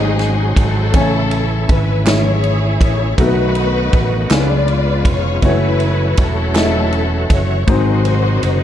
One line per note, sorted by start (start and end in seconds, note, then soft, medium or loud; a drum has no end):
0.00 0.52 G#1 medium
0.00 0.90 G#2 medium
0.00 0.94 F#3 medium
0.00 0.94 G#3 medium
0.00 0.53 C#4 medium
0.00 0.53 D#4 medium
0.00 0.85 D#4 medium
0.00 0.85 F#4 medium
0.00 0.97 F#4 medium
0.00 0.57 G#4 loud
0.00 0.86 G#4 medium
0.00 0.84 C5 medium
0.00 0.94 C5 medium
0.00 0.89 D#5 medium
0.19 snare soft
0.19 ride soft
0.56 0.91 G#1 medium
0.56 1.66 C#4 medium
0.56 1.66 E4 medium
0.56 1.70 A4 loud
0.56 kick medium
0.56 ride medium
0.92 1.64 A1 loud
0.92 2.02 C#3 medium
0.92 3.14 E3 medium
0.92 1.96 A3 medium
0.92 3.15 A3 medium
0.92 1.01 C4 soft
0.92 1.97 C#4 medium
0.92 1.97 E4 medium
0.92 3.14 E4 medium
0.92 1.97 G#5 medium
0.92 kick loud
0.92 ride medium
0.96 1.98 C#5 medium
1.01 3.18 C#4 medium
1.31 ride soft
1.69 2.77 G#1 medium
1.69 2.07 B4 medium
1.69 kick loud
1.69 ride medium
2.04 3.08 A3 medium
2.04 3.08 C#4 medium
2.04 3.09 E4 medium
2.04 3.09 G#4 medium
2.04 3.10 C#5 medium
2.04 snare loud
2.04 clap medium
2.04 ride medium
2.08 3.15 E4 medium
2.08 3.15 G#4 medium
2.08 2.78 C#5 medium
2.44 ride soft
2.81 3.15 A1 medium
2.81 3.17 C#5 medium
2.81 kick medium
2.81 ride medium
3.18 3.89 B1 loud
3.18 4.27 B2 medium
3.18 4.30 D#3 medium
3.18 4.31 F#3 medium
3.18 4.21 A3 medium
3.18 4.31 A3 medium
3.18 4.21 B3 medium
3.18 4.29 B3 medium
3.18 4.22 D#4 medium
3.18 4.28 D#4 medium
3.18 4.30 F#4 medium
3.18 4.22 F#4 medium
3.18 4.28 F#4 medium
3.18 3.26 A4 medium
3.18 4.32 B4 loud
3.18 kick medium
3.18 ride medium
3.27 4.26 B4 medium
3.55 ride soft
3.93 4.28 A1 loud
3.93 kick loud
3.93 ride medium
4.29 5.01 C#2 medium
4.29 5.42 C#3 medium
4.29 5.39 C#3 medium
4.29 5.42 G#3 medium
4.29 5.33 G#3 medium
4.29 5.42 B3 medium
4.29 5.33 C#4 medium
4.29 5.34 D4 medium
4.29 5.42 F4 medium
4.29 5.34 F4 medium
4.29 5.40 F4 medium
4.29 4.38 A4 soft
4.29 5.40 B4 medium
4.29 5.07 D5 medium
4.29 snare loud
4.29 clap medium
4.29 ride medium
4.40 5.38 B4 medium
4.68 ride soft
5.05 5.40 F1 medium
5.05 5.42 C#5 medium
5.05 kick loud
5.05 ride medium
5.41 6.13 F#1 loud
5.41 7.64 E3 medium
5.41 7.64 F#3 medium
5.41 5.48 G#3 medium
5.41 7.64 A3 medium
5.41 6.46 C#4 medium
5.41 7.64 C#4 medium
5.41 6.46 E4 medium
5.41 7.64 F#4 medium
5.41 6.46 F#4 medium
5.41 6.47 C#5 medium
5.41 kick medium
5.41 ride medium
5.46 6.48 A3 medium
5.46 6.20 E4 medium
5.46 6.20 B4 medium
5.80 ride soft
6.17 7.26 E1 loud
6.17 7.28 C#4 medium
6.17 7.28 E4 medium
6.17 kick loud
6.17 ride medium
6.22 7.32 A4 medium
6.53 7.57 A3 medium
6.53 7.58 C#4 medium
6.53 7.59 E4 medium
6.53 7.59 F#4 medium
6.53 snare loud
6.53 clap medium
6.53 ride medium
6.57 6.63 D#5 medium
6.64 7.63 E5 medium
6.92 ride soft
7.30 7.64 F#1 medium
7.30 7.69 C#5 medium
7.30 kick loud
7.30 ride medium
7.67 8.39 G#1 loud
7.67 8.63 G#2 medium
7.67 8.63 C3 medium
7.67 8.63 D#3 medium
7.67 8.63 F#3 medium
7.67 8.63 G#3 medium
7.67 8.63 C4 medium
7.67 8.63 D#4 medium
7.67 8.63 F#4 medium
7.67 8.63 C5 medium
7.67 kick loud
7.67 ride medium
8.05 ride soft
8.43 8.63 F#1 medium
8.43 ride medium